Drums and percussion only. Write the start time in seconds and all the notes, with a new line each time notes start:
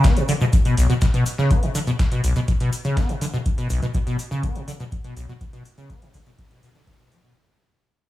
0.04 kick, snare, closed hi-hat, shaker
0.17 closed hi-hat, shaker
0.28 closed hi-hat, open hi-hat, shaker
0.41 shaker
0.53 kick, closed hi-hat, shaker
0.65 closed hi-hat, shaker
0.77 closed hi-hat, open hi-hat, shaker
0.90 closed hi-hat, shaker
1.01 kick, snare, closed hi-hat, shaker
1.14 closed hi-hat, shaker
1.26 closed hi-hat, open hi-hat, shaker
1.38 snare, shaker
1.51 kick, closed hi-hat, shaker
1.63 closed hi-hat, shaker
1.75 closed hi-hat, open hi-hat, shaker
1.87 closed hi-hat, shaker
1.99 kick, snare, closed hi-hat, shaker
2.12 closed hi-hat, shaker
2.24 closed hi-hat, open hi-hat, shaker
2.36 closed hi-hat, shaker
2.48 kick, closed hi-hat, shaker
2.60 closed hi-hat, shaker
2.73 closed hi-hat, open hi-hat, shaker
2.84 closed hi-hat, shaker
2.97 kick, snare, closed hi-hat, shaker
3.09 closed hi-hat, shaker
3.21 closed hi-hat, open hi-hat, shaker
3.33 shaker
3.46 kick, closed hi-hat, shaker
3.58 closed hi-hat, shaker
3.70 open hi-hat, shaker
3.82 closed hi-hat, shaker
3.94 kick, closed hi-hat, shaker
4.07 closed hi-hat, shaker
4.19 open hi-hat, shaker
4.31 shaker
4.43 kick, closed hi-hat, shaker
4.55 closed hi-hat, shaker
4.68 open hi-hat, shaker
4.80 closed hi-hat, shaker
4.92 kick, closed hi-hat, shaker
5.04 closed hi-hat, shaker
5.17 open hi-hat, shaker
5.29 shaker
5.41 kick, closed hi-hat, shaker
5.53 closed hi-hat, shaker
5.65 open hi-hat, shaker
5.78 closed hi-hat, shaker
5.90 kick, closed hi-hat, shaker
6.02 closed hi-hat, shaker
6.14 kick, open hi-hat, shaker
6.26 closed hi-hat, shaker
6.39 kick, closed hi-hat, shaker
6.51 closed hi-hat, shaker
6.63 open hi-hat, shaker
6.75 closed hi-hat, shaker
6.87 kick, closed hi-hat, shaker
6.99 closed hi-hat, shaker
7.12 open hi-hat, shaker
7.24 shaker